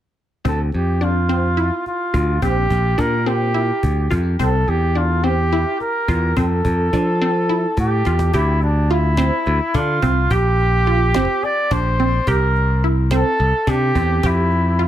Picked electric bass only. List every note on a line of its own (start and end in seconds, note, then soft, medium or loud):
0.45 0.69 D2 medium
0.74 1.69 F2 medium
2.14 2.38 D2 medium
2.42 2.66 A#1 medium
2.70 2.94 A#1 medium
2.99 3.70 A#2 medium
3.83 4.07 D2 medium
4.11 4.35 F2 medium
4.40 4.64 C2 medium
4.68 5.63 E2 medium
6.08 6.32 E2 medium
6.37 6.61 F2 medium
6.65 6.89 F2 medium
6.93 7.65 F3 medium
7.77 8.01 A2 medium
8.07 8.30 E2 medium
8.34 9.29 D2 medium
9.47 9.59 D2 medium
9.74 9.98 D3 medium
10.03 10.27 C2 medium
10.30 11.26 A#1 medium
11.71 12.19 A#1 medium
12.27 13.23 C2 medium
13.40 13.52 C2 medium
13.67 13.91 C3 medium
13.95 14.19 E2 medium
14.23 14.88 F2 medium